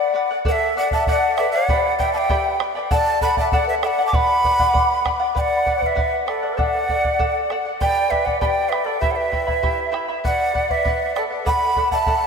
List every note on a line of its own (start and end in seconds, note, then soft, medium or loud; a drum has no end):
0.00 0.13 B4 medium
0.00 0.12 D5 medium
0.00 0.14 D5 medium
0.00 0.10 F#5 medium
0.00 0.14 F#5 medium
0.14 0.29 B4 medium
0.14 0.30 D5 medium
0.14 0.30 F#5 medium
0.31 0.44 D5 soft
0.31 0.45 F#5 medium
0.45 0.75 A4 medium
0.45 0.51 B4 medium
0.45 0.76 D5 medium
0.45 0.76 F#5 medium
0.45 0.53 F#5 medium
0.45 bombo low medium
0.50 0.75 A4 medium
0.50 0.75 E5 medium
0.77 0.91 A4 medium
0.77 0.92 D5 medium
0.77 0.91 D5 medium
0.77 0.92 F#5 medium
0.77 0.91 F#5 medium
0.91 1.07 D5 soft
0.91 1.07 E5 medium
0.91 1.07 F#5 medium
0.91 1.06 A5 medium
0.91 bombo low medium
1.07 1.38 A4 medium
1.07 1.37 D5 medium
1.07 1.14 E5 medium
1.07 1.36 F#5 medium
1.07 1.38 F#5 medium
1.07 bombo low medium
1.13 1.36 D5 medium
1.37 1.53 A4 medium
1.37 1.52 B4 medium
1.37 1.53 D5 medium
1.37 1.51 E5 medium
1.37 1.54 F#5 medium
1.37 bombo rim soft
1.51 1.96 D5 medium
1.51 1.95 F#5 medium
1.51 1.69 F#5 medium
1.56 1.69 D5 soft
1.69 1.99 G4 medium
1.69 1.98 B4 medium
1.69 1.98 D5 medium
1.69 1.99 B5 medium
1.69 bombo low medium
1.99 2.14 B4 medium
1.99 2.14 D5 medium
1.99 2.13 E5 medium
1.99 2.12 G5 medium
1.99 2.14 G5 medium
1.99 2.13 B5 medium
1.99 bombo low medium
2.13 2.29 B4 soft
2.13 2.29 D5 medium
2.13 2.57 E5 medium
2.13 2.19 A5 medium
2.13 2.29 B5 medium
2.18 2.56 G5 medium
2.30 2.60 G4 medium
2.30 2.59 B4 medium
2.30 2.60 D5 medium
2.30 2.58 G5 medium
2.30 2.60 B5 medium
2.30 bombo low medium
2.59 2.75 B4 medium
2.59 2.75 D5 medium
2.59 2.75 G5 medium
2.59 2.74 B5 medium
2.59 bombo rim medium
2.75 2.92 B4 soft
2.75 2.90 D5 medium
2.75 2.91 B5 medium
2.91 3.20 A4 medium
2.91 3.21 D5 medium
2.91 3.21 D5 loud
2.91 3.21 F#5 medium
2.91 3.20 A5 loud
2.91 bombo low medium
3.21 3.37 A4 medium
3.21 3.37 D5 medium
3.21 3.36 F#5 medium
3.21 3.37 F#5 medium
3.21 3.36 B5 loud
3.21 bombo low medium
3.37 3.52 D5 soft
3.37 3.52 E5 medium
3.37 3.52 F#5 medium
3.37 3.52 A5 loud
3.37 bombo low medium
3.52 3.82 A4 medium
3.52 3.66 D5 medium
3.52 3.83 D5 medium
3.52 3.66 F#5 medium
3.52 3.83 F#5 medium
3.52 bombo low medium
3.67 3.73 B4 medium
3.67 3.75 E5 medium
3.81 3.98 A4 medium
3.81 3.99 D5 medium
3.81 3.87 E5 medium
3.81 3.97 F#5 medium
3.81 3.88 G5 medium
3.81 bombo rim medium
3.86 4.04 D5 medium
3.86 4.05 F#5 medium
3.99 4.12 D5 soft
3.99 4.13 F#5 medium
4.05 4.14 A5 medium
4.05 4.17 D6 medium
4.13 4.43 B4 medium
4.13 4.44 D5 medium
4.13 5.05 F#5 medium
4.13 4.44 F#5 medium
4.13 5.06 B5 loud
4.13 bombo low medium
4.44 4.59 B4 medium
4.44 4.60 D5 medium
4.44 4.58 F#5 medium
4.44 bombo low medium
4.60 4.72 D5 soft
4.60 4.72 F#5 medium
4.60 bombo low medium
4.73 5.03 B4 medium
4.73 5.04 D5 medium
4.73 5.05 F#5 medium
4.73 bombo low medium
5.04 5.20 B4 medium
5.04 5.20 D5 medium
5.04 5.18 F#5 medium
5.04 bombo rim soft
5.04 bombo low soft
5.20 5.34 D5 soft
5.20 5.35 F#5 medium
5.35 5.65 B4 medium
5.35 5.65 D5 medium
5.35 5.84 D5 medium
5.35 5.66 F#5 medium
5.35 5.41 G5 medium
5.35 bombo low medium
5.40 5.83 F#5 loud
5.66 5.81 B4 medium
5.66 5.81 D5 medium
5.66 5.80 F#5 medium
5.66 bombo low medium
5.81 6.27 B4 medium
5.81 5.95 D5 soft
5.81 5.95 F#5 medium
5.81 5.87 F#5 medium
5.81 bombo low soft
5.86 6.26 E5 medium
5.95 6.25 B4 medium
5.95 6.26 D5 medium
5.95 6.27 F#5 medium
5.95 bombo low medium
6.26 6.60 A4 medium
6.26 6.42 B4 medium
6.26 6.60 D5 medium
6.26 6.42 D5 medium
6.26 6.41 F#5 medium
6.26 bombo rim soft
6.43 6.57 D5 soft
6.43 6.58 F#5 medium
6.57 6.88 A4 medium
6.57 6.89 D5 medium
6.57 7.50 D5 medium
6.57 7.50 F#5 medium
6.57 6.89 F#5 medium
6.57 bombo low medium
6.89 7.04 A4 medium
6.89 7.04 D5 medium
6.89 7.03 F#5 medium
6.89 bombo low soft
7.04 7.18 D5 soft
7.04 7.19 F#5 medium
7.04 bombo low medium
7.19 7.49 A4 medium
7.19 7.50 D5 medium
7.19 7.50 F#5 medium
7.19 bombo low medium
7.50 7.65 A4 medium
7.50 7.65 D5 medium
7.50 7.64 F#5 medium
7.50 bombo rim soft
7.65 7.80 D5 soft
7.65 7.80 F#5 medium
7.81 8.11 G4 medium
7.81 8.10 B4 medium
7.81 8.11 D5 medium
7.81 8.10 D5 medium
7.81 8.09 G5 medium
7.81 8.12 G5 loud
7.81 8.11 B5 medium
7.81 bombo low medium
8.09 8.27 B4 medium
8.09 8.25 B4 medium
8.09 8.25 D5 medium
8.09 8.26 E5 medium
8.09 8.26 G5 soft
8.09 8.24 B5 medium
8.09 bombo low soft
8.25 8.40 B4 soft
8.25 8.39 D5 medium
8.25 8.40 D5 soft
8.25 8.40 F#5 medium
8.25 8.40 B5 medium
8.25 bombo low soft
8.40 8.72 G4 medium
8.40 8.72 B4 medium
8.40 8.71 D5 medium
8.40 8.72 D5 medium
8.40 8.71 G5 medium
8.40 8.46 A5 medium
8.40 8.72 B5 medium
8.40 bombo low medium
8.45 8.71 G5 medium
8.69 8.87 B4 medium
8.69 8.86 E5 medium
8.69 8.87 G5 medium
8.69 bombo rim soft
8.73 8.87 B4 medium
8.73 8.86 D5 medium
8.73 8.85 B5 medium
8.84 9.01 A4 medium
8.84 9.01 B4 soft
8.84 8.99 D5 medium
8.84 9.02 D5 soft
8.84 9.01 B5 soft
9.00 9.31 E4 medium
9.00 9.32 G4 medium
9.00 9.14 B4 medium
9.00 9.12 E5 medium
9.00 9.32 E5 medium
9.00 9.30 G5 medium
9.00 9.32 B5 medium
9.00 bombo low medium
9.11 9.17 D5 medium
9.11 9.18 F#5 medium
9.16 9.94 B4 medium
9.16 9.94 E5 medium
9.32 9.46 E4 medium
9.32 9.46 E5 medium
9.32 9.48 G5 medium
9.32 9.46 B5 medium
9.32 bombo low medium
9.47 9.62 E4 soft
9.47 9.62 E5 soft
9.47 9.62 B5 medium
9.47 bombo low soft
9.63 9.91 E4 medium
9.63 9.94 G4 medium
9.63 9.91 E5 medium
9.63 9.90 G5 medium
9.63 9.92 B5 medium
9.63 bombo low medium
9.92 10.08 E4 medium
9.92 10.08 E5 medium
9.92 10.08 G5 medium
9.92 10.07 B5 medium
9.92 bombo rim soft
10.08 10.24 E4 soft
10.08 10.24 E5 soft
10.08 10.24 B5 soft
10.24 10.52 B4 medium
10.24 10.53 D5 medium
10.24 10.72 D5 medium
10.24 10.54 F#5 medium
10.24 10.72 F#5 medium
10.24 bombo low medium
10.54 10.69 B4 medium
10.54 10.69 D5 medium
10.54 10.68 F#5 medium
10.54 bombo low soft
10.69 11.16 B4 medium
10.69 10.84 D5 soft
10.69 11.15 E5 medium
10.69 10.84 F#5 medium
10.69 bombo low soft
10.85 11.14 B4 medium
10.85 11.15 D5 medium
10.85 11.15 F#5 medium
10.85 bombo low medium
11.15 11.24 A4 medium
11.15 11.31 B4 medium
11.15 11.22 D5 medium
11.15 11.31 D5 medium
11.15 11.29 F#5 medium
11.15 bombo rim soft
11.31 11.45 D5 soft
11.31 11.45 F#5 medium
11.45 11.75 A4 medium
11.45 11.76 D5 medium
11.45 11.77 F#5 medium
11.45 11.51 G5 medium
11.45 11.89 B5 loud
11.45 bombo low medium
11.50 11.89 F#5 medium
11.76 11.92 A4 medium
11.76 11.92 D5 medium
11.76 11.91 F#5 medium
11.76 bombo low soft
11.91 12.06 D5 soft
11.91 12.27 E5 medium
11.91 12.06 F#5 medium
11.91 12.27 A5 loud
11.91 bombo low soft
12.06 12.27 A4 medium
12.06 12.27 D5 medium
12.06 12.27 F#5 medium
12.06 bombo low medium